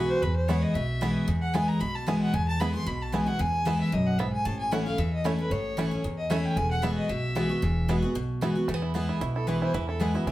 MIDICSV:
0, 0, Header, 1, 5, 480
1, 0, Start_track
1, 0, Key_signature, 4, "major"
1, 0, Tempo, 264434
1, 403, Time_signature, 4, 2, 24, 8
1, 18729, End_track
2, 0, Start_track
2, 0, Title_t, "Fiddle"
2, 0, Program_c, 0, 110
2, 0, Note_on_c, 0, 71, 88
2, 172, Note_on_c, 0, 72, 127
2, 199, Note_off_c, 0, 71, 0
2, 401, Note_on_c, 0, 71, 93
2, 428, Note_off_c, 0, 72, 0
2, 646, Note_off_c, 0, 71, 0
2, 657, Note_on_c, 0, 72, 99
2, 872, Note_on_c, 0, 73, 101
2, 899, Note_off_c, 0, 72, 0
2, 1131, Note_on_c, 0, 75, 93
2, 1158, Note_off_c, 0, 73, 0
2, 1354, Note_on_c, 0, 76, 96
2, 1381, Note_off_c, 0, 75, 0
2, 2320, Note_off_c, 0, 76, 0
2, 2575, Note_on_c, 0, 78, 99
2, 2789, Note_on_c, 0, 80, 106
2, 2816, Note_off_c, 0, 78, 0
2, 3054, Note_on_c, 0, 82, 98
2, 3081, Note_off_c, 0, 80, 0
2, 3279, Note_on_c, 0, 83, 108
2, 3306, Note_off_c, 0, 82, 0
2, 3540, Note_on_c, 0, 81, 103
2, 3567, Note_off_c, 0, 83, 0
2, 3767, Note_on_c, 0, 80, 94
2, 3795, Note_off_c, 0, 81, 0
2, 4009, Note_off_c, 0, 80, 0
2, 4020, Note_on_c, 0, 78, 99
2, 4245, Note_on_c, 0, 80, 108
2, 4273, Note_off_c, 0, 78, 0
2, 4493, Note_off_c, 0, 80, 0
2, 4504, Note_on_c, 0, 81, 106
2, 4726, Note_on_c, 0, 83, 99
2, 4754, Note_off_c, 0, 81, 0
2, 4964, Note_off_c, 0, 83, 0
2, 4975, Note_on_c, 0, 84, 122
2, 5213, Note_on_c, 0, 83, 103
2, 5240, Note_off_c, 0, 84, 0
2, 5481, Note_on_c, 0, 81, 91
2, 5508, Note_off_c, 0, 83, 0
2, 5689, Note_on_c, 0, 80, 99
2, 5716, Note_off_c, 0, 81, 0
2, 5940, Note_on_c, 0, 78, 117
2, 5967, Note_off_c, 0, 80, 0
2, 6176, Note_on_c, 0, 80, 122
2, 6203, Note_off_c, 0, 78, 0
2, 6897, Note_off_c, 0, 80, 0
2, 6908, Note_on_c, 0, 76, 92
2, 7131, Note_on_c, 0, 75, 84
2, 7158, Note_off_c, 0, 76, 0
2, 7380, Note_on_c, 0, 78, 104
2, 7407, Note_off_c, 0, 75, 0
2, 7601, Note_on_c, 0, 76, 88
2, 7628, Note_off_c, 0, 78, 0
2, 7845, Note_off_c, 0, 76, 0
2, 7856, Note_on_c, 0, 80, 105
2, 8083, Note_on_c, 0, 81, 112
2, 8110, Note_off_c, 0, 80, 0
2, 8324, Note_off_c, 0, 81, 0
2, 8335, Note_on_c, 0, 80, 111
2, 8565, Note_on_c, 0, 78, 98
2, 8592, Note_off_c, 0, 80, 0
2, 8808, Note_off_c, 0, 78, 0
2, 8819, Note_on_c, 0, 77, 93
2, 9053, Note_on_c, 0, 76, 84
2, 9081, Note_off_c, 0, 77, 0
2, 9299, Note_off_c, 0, 76, 0
2, 9310, Note_on_c, 0, 75, 95
2, 9529, Note_on_c, 0, 73, 85
2, 9556, Note_off_c, 0, 75, 0
2, 9775, Note_off_c, 0, 73, 0
2, 9786, Note_on_c, 0, 71, 98
2, 10009, Note_on_c, 0, 73, 96
2, 10036, Note_off_c, 0, 71, 0
2, 10965, Note_off_c, 0, 73, 0
2, 11209, Note_on_c, 0, 75, 95
2, 11434, Note_on_c, 0, 76, 92
2, 11462, Note_off_c, 0, 75, 0
2, 11704, Note_on_c, 0, 79, 110
2, 11732, Note_off_c, 0, 76, 0
2, 11919, Note_on_c, 0, 80, 121
2, 11946, Note_off_c, 0, 79, 0
2, 12167, Note_off_c, 0, 80, 0
2, 12178, Note_on_c, 0, 78, 104
2, 12403, Note_on_c, 0, 76, 99
2, 12430, Note_off_c, 0, 78, 0
2, 12647, Note_off_c, 0, 76, 0
2, 12658, Note_on_c, 0, 75, 97
2, 12872, Note_on_c, 0, 76, 101
2, 12899, Note_off_c, 0, 75, 0
2, 14314, Note_off_c, 0, 76, 0
2, 16971, Note_on_c, 0, 69, 74
2, 17187, Note_on_c, 0, 71, 75
2, 17214, Note_off_c, 0, 69, 0
2, 17436, Note_off_c, 0, 71, 0
2, 17447, Note_on_c, 0, 72, 100
2, 17675, Note_on_c, 0, 71, 86
2, 17703, Note_off_c, 0, 72, 0
2, 17925, Note_off_c, 0, 71, 0
2, 17936, Note_on_c, 0, 69, 81
2, 18161, Note_on_c, 0, 68, 75
2, 18188, Note_off_c, 0, 69, 0
2, 18412, Note_on_c, 0, 66, 79
2, 18439, Note_off_c, 0, 68, 0
2, 18641, Note_on_c, 0, 68, 73
2, 18668, Note_off_c, 0, 66, 0
2, 18729, Note_off_c, 0, 68, 0
2, 18729, End_track
3, 0, Start_track
3, 0, Title_t, "Five-string banjo"
3, 0, Program_c, 1, 105
3, 889, Note_on_c, 1, 59, 61
3, 898, Note_on_c, 1, 64, 64
3, 934, Note_off_c, 1, 64, 0
3, 999, Note_off_c, 1, 59, 0
3, 1851, Note_on_c, 1, 59, 66
3, 1859, Note_on_c, 1, 64, 68
3, 1896, Note_off_c, 1, 64, 0
3, 1961, Note_off_c, 1, 59, 0
3, 2809, Note_on_c, 1, 59, 61
3, 2820, Note_on_c, 1, 64, 59
3, 2856, Note_off_c, 1, 64, 0
3, 2922, Note_off_c, 1, 59, 0
3, 3773, Note_on_c, 1, 59, 67
3, 3783, Note_on_c, 1, 64, 69
3, 3820, Note_off_c, 1, 64, 0
3, 3883, Note_off_c, 1, 59, 0
3, 4739, Note_on_c, 1, 59, 65
3, 4747, Note_on_c, 1, 64, 63
3, 4783, Note_off_c, 1, 64, 0
3, 4846, Note_off_c, 1, 59, 0
3, 5692, Note_on_c, 1, 59, 68
3, 5699, Note_on_c, 1, 64, 65
3, 5735, Note_off_c, 1, 64, 0
3, 5802, Note_off_c, 1, 59, 0
3, 6659, Note_on_c, 1, 59, 62
3, 6666, Note_on_c, 1, 64, 61
3, 6703, Note_off_c, 1, 64, 0
3, 6766, Note_off_c, 1, 59, 0
3, 7619, Note_on_c, 1, 59, 67
3, 7626, Note_on_c, 1, 64, 66
3, 7662, Note_off_c, 1, 64, 0
3, 7726, Note_off_c, 1, 59, 0
3, 8576, Note_on_c, 1, 57, 62
3, 8582, Note_on_c, 1, 61, 64
3, 8588, Note_on_c, 1, 64, 65
3, 8684, Note_off_c, 1, 57, 0
3, 8686, Note_off_c, 1, 61, 0
3, 8690, Note_off_c, 1, 64, 0
3, 9532, Note_on_c, 1, 57, 69
3, 9545, Note_on_c, 1, 61, 70
3, 9547, Note_on_c, 1, 64, 67
3, 9643, Note_off_c, 1, 57, 0
3, 9645, Note_off_c, 1, 61, 0
3, 9649, Note_off_c, 1, 64, 0
3, 10494, Note_on_c, 1, 57, 64
3, 10504, Note_on_c, 1, 61, 66
3, 10509, Note_on_c, 1, 64, 61
3, 10602, Note_off_c, 1, 57, 0
3, 10605, Note_off_c, 1, 61, 0
3, 10609, Note_off_c, 1, 64, 0
3, 11445, Note_on_c, 1, 57, 69
3, 11458, Note_on_c, 1, 64, 69
3, 11460, Note_on_c, 1, 61, 68
3, 11557, Note_off_c, 1, 57, 0
3, 11561, Note_off_c, 1, 61, 0
3, 11563, Note_off_c, 1, 64, 0
3, 12402, Note_on_c, 1, 59, 64
3, 12414, Note_on_c, 1, 64, 65
3, 12451, Note_off_c, 1, 64, 0
3, 12515, Note_off_c, 1, 59, 0
3, 13365, Note_on_c, 1, 59, 72
3, 13379, Note_on_c, 1, 64, 68
3, 13415, Note_off_c, 1, 64, 0
3, 13476, Note_off_c, 1, 59, 0
3, 14324, Note_on_c, 1, 59, 70
3, 14334, Note_on_c, 1, 64, 67
3, 14370, Note_off_c, 1, 64, 0
3, 14434, Note_off_c, 1, 59, 0
3, 15289, Note_on_c, 1, 59, 69
3, 15301, Note_on_c, 1, 64, 70
3, 15337, Note_off_c, 1, 64, 0
3, 15397, Note_off_c, 1, 59, 0
3, 15756, Note_on_c, 1, 57, 72
3, 15860, Note_off_c, 1, 57, 0
3, 15860, Note_on_c, 1, 59, 79
3, 16014, Note_on_c, 1, 64, 58
3, 16220, Note_off_c, 1, 59, 0
3, 16241, Note_on_c, 1, 59, 56
3, 16479, Note_off_c, 1, 64, 0
3, 16501, Note_on_c, 1, 64, 61
3, 16702, Note_off_c, 1, 64, 0
3, 16724, Note_on_c, 1, 64, 67
3, 16966, Note_off_c, 1, 64, 0
3, 16988, Note_on_c, 1, 64, 53
3, 17214, Note_on_c, 1, 52, 61
3, 17440, Note_off_c, 1, 64, 0
3, 17462, Note_on_c, 1, 64, 57
3, 17666, Note_off_c, 1, 64, 0
3, 17688, Note_on_c, 1, 64, 68
3, 17894, Note_off_c, 1, 52, 0
3, 17923, Note_off_c, 1, 64, 0
3, 17945, Note_on_c, 1, 64, 60
3, 18161, Note_off_c, 1, 59, 0
3, 18168, Note_on_c, 1, 59, 54
3, 18409, Note_off_c, 1, 64, 0
3, 18431, Note_on_c, 1, 64, 64
3, 18624, Note_off_c, 1, 64, 0
3, 18646, Note_on_c, 1, 64, 67
3, 18729, Note_off_c, 1, 59, 0
3, 18729, Note_off_c, 1, 64, 0
3, 18729, End_track
4, 0, Start_track
4, 0, Title_t, "Steel-string acoustic guitar"
4, 0, Program_c, 2, 25
4, 0, Note_on_c, 2, 47, 97
4, 0, Note_on_c, 2, 52, 86
4, 0, Note_on_c, 2, 56, 86
4, 0, Note_on_c, 2, 59, 101
4, 0, Note_on_c, 2, 66, 93
4, 358, Note_off_c, 2, 47, 0
4, 376, Note_off_c, 2, 52, 0
4, 383, Note_off_c, 2, 56, 0
4, 387, Note_off_c, 2, 59, 0
4, 393, Note_off_c, 2, 66, 0
4, 409, Note_on_c, 2, 40, 92
4, 881, Note_on_c, 2, 52, 92
4, 897, Note_on_c, 2, 56, 81
4, 906, Note_on_c, 2, 59, 83
4, 916, Note_on_c, 2, 64, 90
4, 1322, Note_off_c, 2, 40, 0
4, 1340, Note_off_c, 2, 52, 0
4, 1348, Note_off_c, 2, 56, 0
4, 1353, Note_off_c, 2, 59, 0
4, 1358, Note_off_c, 2, 64, 0
4, 1366, Note_on_c, 2, 47, 88
4, 1832, Note_on_c, 2, 52, 86
4, 1844, Note_on_c, 2, 56, 85
4, 1857, Note_on_c, 2, 59, 92
4, 1863, Note_on_c, 2, 64, 102
4, 2281, Note_off_c, 2, 47, 0
4, 2296, Note_off_c, 2, 52, 0
4, 2302, Note_off_c, 2, 56, 0
4, 2309, Note_off_c, 2, 59, 0
4, 2312, Note_off_c, 2, 64, 0
4, 2316, Note_on_c, 2, 40, 100
4, 2787, Note_on_c, 2, 52, 78
4, 2801, Note_on_c, 2, 56, 84
4, 2811, Note_on_c, 2, 59, 89
4, 2823, Note_on_c, 2, 64, 84
4, 3237, Note_off_c, 2, 40, 0
4, 3254, Note_off_c, 2, 52, 0
4, 3261, Note_off_c, 2, 56, 0
4, 3266, Note_off_c, 2, 59, 0
4, 3272, Note_off_c, 2, 64, 0
4, 3279, Note_on_c, 2, 47, 88
4, 3749, Note_on_c, 2, 52, 85
4, 3763, Note_on_c, 2, 56, 88
4, 3777, Note_on_c, 2, 59, 104
4, 3786, Note_on_c, 2, 64, 87
4, 4199, Note_off_c, 2, 47, 0
4, 4216, Note_off_c, 2, 52, 0
4, 4222, Note_off_c, 2, 56, 0
4, 4230, Note_off_c, 2, 59, 0
4, 4234, Note_off_c, 2, 64, 0
4, 4240, Note_on_c, 2, 40, 101
4, 4717, Note_on_c, 2, 52, 85
4, 4730, Note_on_c, 2, 56, 90
4, 4741, Note_on_c, 2, 59, 93
4, 4750, Note_on_c, 2, 64, 99
4, 4945, Note_off_c, 2, 64, 0
4, 4967, Note_on_c, 2, 64, 64
4, 4969, Note_off_c, 2, 52, 0
4, 4976, Note_off_c, 2, 56, 0
4, 4981, Note_off_c, 2, 59, 0
4, 5002, Note_on_c, 2, 59, 54
4, 5159, Note_off_c, 2, 40, 0
4, 5189, Note_off_c, 2, 64, 0
4, 5201, Note_on_c, 2, 47, 99
4, 5207, Note_off_c, 2, 59, 0
4, 5670, Note_on_c, 2, 52, 83
4, 5684, Note_on_c, 2, 56, 89
4, 5693, Note_on_c, 2, 59, 88
4, 5707, Note_on_c, 2, 64, 91
4, 5904, Note_off_c, 2, 64, 0
4, 5925, Note_off_c, 2, 52, 0
4, 5925, Note_on_c, 2, 64, 68
4, 5932, Note_off_c, 2, 56, 0
4, 5937, Note_off_c, 2, 59, 0
4, 5958, Note_on_c, 2, 59, 52
4, 6119, Note_off_c, 2, 47, 0
4, 6148, Note_off_c, 2, 64, 0
4, 6157, Note_on_c, 2, 40, 99
4, 6164, Note_off_c, 2, 59, 0
4, 6630, Note_on_c, 2, 52, 94
4, 6640, Note_on_c, 2, 56, 97
4, 6655, Note_on_c, 2, 59, 87
4, 6666, Note_on_c, 2, 64, 99
4, 7077, Note_off_c, 2, 40, 0
4, 7095, Note_off_c, 2, 52, 0
4, 7101, Note_off_c, 2, 56, 0
4, 7108, Note_off_c, 2, 59, 0
4, 7114, Note_off_c, 2, 64, 0
4, 7121, Note_on_c, 2, 42, 95
4, 7581, Note_off_c, 2, 42, 0
4, 7602, Note_on_c, 2, 44, 88
4, 8061, Note_off_c, 2, 44, 0
4, 8082, Note_on_c, 2, 45, 100
4, 8556, Note_on_c, 2, 52, 88
4, 8568, Note_on_c, 2, 57, 98
4, 8579, Note_on_c, 2, 61, 93
4, 8589, Note_on_c, 2, 64, 93
4, 8799, Note_off_c, 2, 64, 0
4, 8807, Note_off_c, 2, 52, 0
4, 8813, Note_off_c, 2, 57, 0
4, 8819, Note_off_c, 2, 61, 0
4, 8821, Note_on_c, 2, 64, 65
4, 8852, Note_on_c, 2, 61, 53
4, 8998, Note_off_c, 2, 45, 0
4, 9035, Note_off_c, 2, 64, 0
4, 9044, Note_on_c, 2, 40, 100
4, 9050, Note_off_c, 2, 61, 0
4, 9516, Note_on_c, 2, 52, 85
4, 9527, Note_on_c, 2, 57, 92
4, 9541, Note_on_c, 2, 61, 102
4, 9547, Note_on_c, 2, 64, 97
4, 9753, Note_off_c, 2, 64, 0
4, 9767, Note_off_c, 2, 52, 0
4, 9772, Note_off_c, 2, 57, 0
4, 9775, Note_on_c, 2, 64, 64
4, 9779, Note_off_c, 2, 61, 0
4, 9808, Note_on_c, 2, 61, 49
4, 9959, Note_off_c, 2, 40, 0
4, 9991, Note_off_c, 2, 64, 0
4, 10005, Note_on_c, 2, 45, 96
4, 10008, Note_off_c, 2, 61, 0
4, 10472, Note_on_c, 2, 52, 93
4, 10487, Note_on_c, 2, 57, 87
4, 10501, Note_on_c, 2, 61, 94
4, 10507, Note_on_c, 2, 64, 108
4, 10709, Note_off_c, 2, 64, 0
4, 10724, Note_off_c, 2, 52, 0
4, 10731, Note_on_c, 2, 64, 71
4, 10732, Note_off_c, 2, 57, 0
4, 10739, Note_off_c, 2, 61, 0
4, 10768, Note_on_c, 2, 61, 52
4, 10918, Note_off_c, 2, 45, 0
4, 10949, Note_off_c, 2, 64, 0
4, 10967, Note_off_c, 2, 61, 0
4, 10969, Note_on_c, 2, 40, 98
4, 11431, Note_on_c, 2, 52, 93
4, 11446, Note_on_c, 2, 57, 83
4, 11456, Note_on_c, 2, 61, 105
4, 11466, Note_on_c, 2, 64, 107
4, 11880, Note_off_c, 2, 40, 0
4, 11893, Note_off_c, 2, 52, 0
4, 11901, Note_off_c, 2, 57, 0
4, 11906, Note_off_c, 2, 61, 0
4, 11911, Note_off_c, 2, 64, 0
4, 11924, Note_on_c, 2, 40, 104
4, 12380, Note_on_c, 2, 52, 86
4, 12398, Note_on_c, 2, 56, 97
4, 12406, Note_on_c, 2, 59, 93
4, 12417, Note_on_c, 2, 66, 96
4, 12837, Note_off_c, 2, 40, 0
4, 12847, Note_off_c, 2, 52, 0
4, 12856, Note_off_c, 2, 56, 0
4, 12860, Note_off_c, 2, 59, 0
4, 12865, Note_off_c, 2, 66, 0
4, 12875, Note_on_c, 2, 47, 94
4, 13346, Note_on_c, 2, 52, 91
4, 13357, Note_on_c, 2, 56, 94
4, 13372, Note_on_c, 2, 59, 90
4, 13378, Note_on_c, 2, 66, 94
4, 13581, Note_off_c, 2, 66, 0
4, 13599, Note_off_c, 2, 52, 0
4, 13603, Note_on_c, 2, 66, 67
4, 13605, Note_off_c, 2, 56, 0
4, 13612, Note_off_c, 2, 59, 0
4, 13638, Note_on_c, 2, 59, 54
4, 13792, Note_off_c, 2, 47, 0
4, 13823, Note_off_c, 2, 66, 0
4, 13836, Note_on_c, 2, 40, 102
4, 13841, Note_off_c, 2, 59, 0
4, 14310, Note_on_c, 2, 52, 89
4, 14321, Note_on_c, 2, 56, 100
4, 14333, Note_on_c, 2, 59, 94
4, 14347, Note_on_c, 2, 66, 93
4, 14542, Note_off_c, 2, 66, 0
4, 14561, Note_off_c, 2, 52, 0
4, 14564, Note_on_c, 2, 66, 74
4, 14566, Note_off_c, 2, 56, 0
4, 14573, Note_off_c, 2, 59, 0
4, 14596, Note_on_c, 2, 59, 58
4, 14752, Note_off_c, 2, 40, 0
4, 14783, Note_off_c, 2, 66, 0
4, 14799, Note_off_c, 2, 59, 0
4, 14799, Note_on_c, 2, 47, 106
4, 15271, Note_on_c, 2, 52, 86
4, 15284, Note_on_c, 2, 56, 96
4, 15296, Note_on_c, 2, 59, 93
4, 15307, Note_on_c, 2, 66, 103
4, 15506, Note_off_c, 2, 66, 0
4, 15522, Note_off_c, 2, 52, 0
4, 15527, Note_on_c, 2, 66, 63
4, 15528, Note_off_c, 2, 56, 0
4, 15534, Note_off_c, 2, 59, 0
4, 15557, Note_on_c, 2, 59, 51
4, 15714, Note_off_c, 2, 47, 0
4, 15745, Note_off_c, 2, 66, 0
4, 15760, Note_off_c, 2, 59, 0
4, 15768, Note_on_c, 2, 40, 92
4, 16226, Note_on_c, 2, 52, 71
4, 16243, Note_on_c, 2, 56, 87
4, 16253, Note_on_c, 2, 59, 85
4, 16260, Note_on_c, 2, 64, 88
4, 16679, Note_off_c, 2, 40, 0
4, 16690, Note_off_c, 2, 52, 0
4, 16699, Note_off_c, 2, 56, 0
4, 16704, Note_off_c, 2, 59, 0
4, 16708, Note_off_c, 2, 64, 0
4, 16722, Note_on_c, 2, 47, 88
4, 17188, Note_on_c, 2, 52, 80
4, 17202, Note_on_c, 2, 56, 75
4, 17214, Note_on_c, 2, 59, 84
4, 17219, Note_on_c, 2, 64, 87
4, 17638, Note_off_c, 2, 47, 0
4, 17653, Note_off_c, 2, 52, 0
4, 17660, Note_off_c, 2, 56, 0
4, 17666, Note_off_c, 2, 59, 0
4, 17668, Note_off_c, 2, 64, 0
4, 17685, Note_on_c, 2, 40, 98
4, 18144, Note_on_c, 2, 52, 79
4, 18159, Note_on_c, 2, 56, 84
4, 18169, Note_on_c, 2, 59, 79
4, 18179, Note_on_c, 2, 64, 88
4, 18391, Note_off_c, 2, 64, 0
4, 18401, Note_off_c, 2, 52, 0
4, 18408, Note_off_c, 2, 56, 0
4, 18412, Note_on_c, 2, 64, 64
4, 18413, Note_off_c, 2, 59, 0
4, 18445, Note_on_c, 2, 59, 45
4, 18601, Note_off_c, 2, 40, 0
4, 18630, Note_off_c, 2, 64, 0
4, 18647, Note_off_c, 2, 59, 0
4, 18648, Note_on_c, 2, 47, 91
4, 18729, Note_off_c, 2, 47, 0
4, 18729, End_track
5, 0, Start_track
5, 0, Title_t, "Upright bass"
5, 0, Program_c, 3, 32
5, 397, Note_on_c, 3, 40, 107
5, 1124, Note_off_c, 3, 40, 0
5, 1355, Note_on_c, 3, 35, 84
5, 2083, Note_off_c, 3, 35, 0
5, 2316, Note_on_c, 3, 40, 99
5, 3044, Note_off_c, 3, 40, 0
5, 3278, Note_on_c, 3, 35, 85
5, 4005, Note_off_c, 3, 35, 0
5, 4237, Note_on_c, 3, 40, 102
5, 4965, Note_off_c, 3, 40, 0
5, 5197, Note_on_c, 3, 35, 85
5, 5925, Note_off_c, 3, 35, 0
5, 6160, Note_on_c, 3, 40, 101
5, 6886, Note_off_c, 3, 40, 0
5, 7118, Note_on_c, 3, 35, 80
5, 7845, Note_off_c, 3, 35, 0
5, 8080, Note_on_c, 3, 33, 108
5, 8805, Note_off_c, 3, 33, 0
5, 9035, Note_on_c, 3, 40, 88
5, 9762, Note_off_c, 3, 40, 0
5, 9988, Note_on_c, 3, 33, 99
5, 10717, Note_off_c, 3, 33, 0
5, 10953, Note_on_c, 3, 40, 81
5, 11680, Note_off_c, 3, 40, 0
5, 11909, Note_on_c, 3, 28, 102
5, 12636, Note_off_c, 3, 28, 0
5, 12872, Note_on_c, 3, 35, 85
5, 13598, Note_off_c, 3, 35, 0
5, 13840, Note_on_c, 3, 28, 110
5, 14563, Note_off_c, 3, 28, 0
5, 14791, Note_on_c, 3, 35, 81
5, 15518, Note_off_c, 3, 35, 0
5, 15752, Note_on_c, 3, 40, 99
5, 16479, Note_off_c, 3, 40, 0
5, 16714, Note_on_c, 3, 35, 84
5, 17442, Note_off_c, 3, 35, 0
5, 17670, Note_on_c, 3, 40, 102
5, 18400, Note_off_c, 3, 40, 0
5, 18628, Note_on_c, 3, 35, 85
5, 18729, Note_off_c, 3, 35, 0
5, 18729, End_track
0, 0, End_of_file